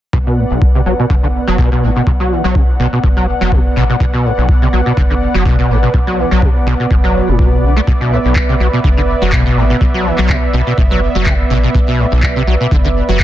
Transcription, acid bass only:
0.13 B2
0.27 B2
0.38 A2
0.51 B1
0.75 C3
0.86 F#3
0.99 B2
1.10 D3
1.23 D3
1.48 F#3
1.59 B2
1.72 B2
1.83 A2
1.96 B2
2.07 B2
2.20 F#3
2.31 E3
2.44 F#3
2.55 B2
2.79 B2
2.93 B2
3.04 B2
3.17 F#3
3.41 F#3
3.52 B2
3.76 B2
3.89 B2
4.00 B2
4.14 B2
4.25 A2
4.38 B1
4.62 C3
4.73 F#3
4.86 B2
4.97 D3
5.10 D3
5.34 F#3
5.46 B2
5.59 B2
5.70 A2
5.83 B2
5.94 B2
6.07 F#3
6.18 E3
6.31 F#3
6.42 B2
6.67 B2
6.80 B2
6.91 B2
7.04 F#3
7.28 A2
7.39 B2
7.63 D3
7.76 A3
7.87 B2
8.01 B2
8.12 A2
8.25 B1
8.49 C3
8.60 F#3
8.73 B2
8.84 D3
8.97 D3
9.22 F#3
9.33 B2
9.46 B2
9.57 A2
9.70 B2
9.81 B2
9.94 F#3
10.05 E3
10.18 F#3
10.29 B2
10.54 B2
10.67 B2
10.78 B2
10.91 F#3
11.15 F#3
11.26 B2
11.50 B2
11.64 B2
11.75 B2
11.88 B2
11.99 A2
12.12 B1
12.36 C3
12.47 F#3
12.60 B2
12.71 D3
12.85 D3
13.09 F#3
13.20 B2

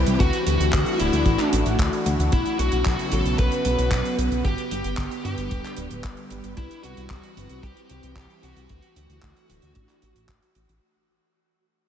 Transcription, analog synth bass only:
0.07 C2
0.20 D2
0.47 D2
0.60 D2
0.73 D2
1.00 D1
1.13 D2
1.26 A1
1.53 A1
1.66 A1
1.79 D2
2.06 D2
2.19 D2
2.33 B1
2.59 B1
2.72 B1
2.86 B1
3.12 A1
3.25 B1
3.39 B1
3.65 B1
3.78 B1
3.91 B1
4.18 B1
4.32 B1
4.45 G1
4.71 G1
4.85 G1
4.98 G1
5.25 G2
5.38 G1
5.52 D1
5.78 D1
5.91 D1
6.04 G1
6.31 G1
6.44 G1
6.57 C2
6.84 C2
6.97 C2
7.10 C2
7.37 G1
7.50 C2
7.63 C2
7.90 C2
8.03 C2
8.16 C2
8.43 C2
8.56 C2
8.70 D2
8.96 D2
9.09 D2
9.23 D2
9.49 D1
9.63 D2
9.76 A1
10.03 A1
10.16 A1
10.29 A1
10.56 A1
10.69 A1

